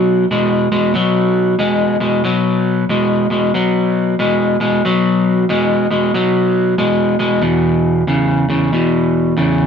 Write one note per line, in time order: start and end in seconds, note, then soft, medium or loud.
0.00 0.24 B2 medium
0.00 0.25 F#3 medium
0.31 0.67 B2 medium
0.31 0.67 G#3 loud
0.72 0.92 B2 medium
0.72 0.92 G#3 medium
0.94 1.54 B2 medium
0.94 1.55 F#3 medium
1.59 1.96 B2 medium
1.59 1.96 G#3 medium
2.00 2.21 B2 medium
2.00 2.22 G#3 medium
2.24 2.84 B2 medium
2.24 2.84 F#3 loud
2.89 3.26 B2 medium
2.89 3.27 G#3 medium
3.30 3.51 B2 medium
3.30 3.52 G#3 medium
3.54 4.14 B2 medium
3.54 4.14 F#3 medium
4.19 4.56 B2 medium
4.19 4.56 G#3 medium
4.60 4.81 B2 medium
4.60 4.81 G#3 medium
4.85 5.44 B2 medium
4.85 5.45 F#3 medium
5.49 5.86 B2 medium
5.49 5.86 G#3 medium
5.91 6.11 B2 medium
5.91 6.12 G#3 medium
6.14 6.74 B2 medium
6.14 6.74 F#3 medium
6.78 7.16 B2 medium
6.78 7.15 G#3 medium
7.19 7.41 B2 medium
7.19 7.41 G#3 medium
7.42 8.03 E2 medium
7.42 8.03 B2 medium
8.07 8.45 E2 medium
8.07 8.45 C#3 medium
8.49 8.70 E2 medium
8.49 8.71 C#3 medium
8.73 9.33 E2 medium
8.73 9.33 B2 medium
9.37 9.67 E2 medium
9.37 9.67 C#3 medium